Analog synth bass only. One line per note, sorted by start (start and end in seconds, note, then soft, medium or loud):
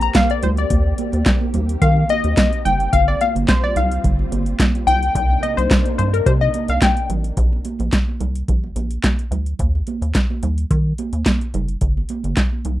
0.43 0.66 D2 loud
0.70 0.93 D#2 loud
1.13 1.24 D#2 loud
1.54 1.77 D#2 loud
1.82 2.04 D#3 loud
2.24 2.35 D#2 medium
2.66 2.88 F#1 medium
2.93 3.16 G1 loud
3.36 3.46 G1 medium
3.76 3.99 C2 loud
4.04 4.27 G1 loud
4.32 4.54 G1 medium
4.87 5.10 C2 loud
5.15 5.38 C2 loud
5.58 5.68 C2 medium
5.99 6.21 G2 medium
6.26 6.49 C3 loud
6.69 6.79 C2 medium
7.09 7.32 A1 medium
7.37 7.60 A#1 loud
7.80 7.90 A#1 medium
8.20 8.43 C2 medium
8.48 8.71 A#1 medium
8.76 8.99 A#1 medium
9.31 9.54 D2 medium
9.60 9.82 D#2 loud
10.02 10.12 D#2 medium
10.43 10.65 D#2 medium
10.71 10.93 D#3 medium
11.13 11.24 D#2 medium
11.54 11.77 F#1 loud
11.81 12.04 G1 loud
12.24 12.35 G1 medium
12.65 12.80 C2 medium